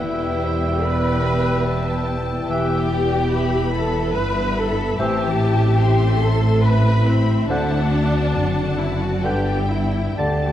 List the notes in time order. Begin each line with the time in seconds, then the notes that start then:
Already playing: E1 E2 E3 G3 B3 E4 G4 B4 E5 G5
0.24 B3
0.42 C5
0.54 E4
0.83 G4 B4 D5 G5 B5
1.13 B4
1.27 E5
1.40 E5
1.66 B4 E5 G5 A5
1.94 G4
2.09 B4
2.22 E4
2.47 E1 E2 E3 B3 E4 G4 B4 E5 G5
2.76 B3
2.91 D5
3.04 E4
3.31 G4 E5 B5
3.60 B4
3.73 A4 E5 A5
3.87 E5
4.14 G1 G2 B4 B5
4.43 G4
4.58 A4 A5
4.72 E4
4.99 A1 A2 E3 C4 G4 C5 E5 G5 A5
5.26 E3
5.41 E5
5.53 C4
5.79 E4 C5 C6
6.06 A4
6.21 A4 A5
6.34 C5
6.62 A4 B4 E5 B5
6.91 E4
7.07 C4 C5
7.20 C4
7.48 D2 D3 C4 D4 F#4 C5 D5 F#5 A5
7.77 A3
8.05 C4
8.34 F#1 F#2 F#4 D5 F#5
8.64 A4
8.79 E4 E5
8.94 C5
9.02 F#4 F#5
9.23 G1 G2 D3 B3 D4 G4 B4 E5 G5
9.53 B3
9.70 E4 E5
9.85 D4 G4
10.18 D2 D3 A3 D4 G4 D5 G5 A5